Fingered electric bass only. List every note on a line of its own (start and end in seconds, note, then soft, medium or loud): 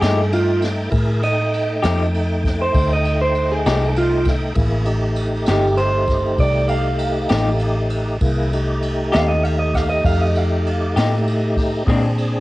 0.02 0.90 G2 medium
0.92 1.81 A2 medium
1.84 2.72 F2 medium
2.75 3.63 D2 medium
3.66 4.55 C2 medium
4.56 5.45 A1 medium
5.48 6.37 G1 medium
6.39 7.27 C2 medium
7.31 8.19 A1 medium
8.22 9.10 C2 medium
9.15 10.02 D#2 medium
10.05 10.93 F2 medium
10.96 11.84 A2 medium
11.88 12.40 A#2 medium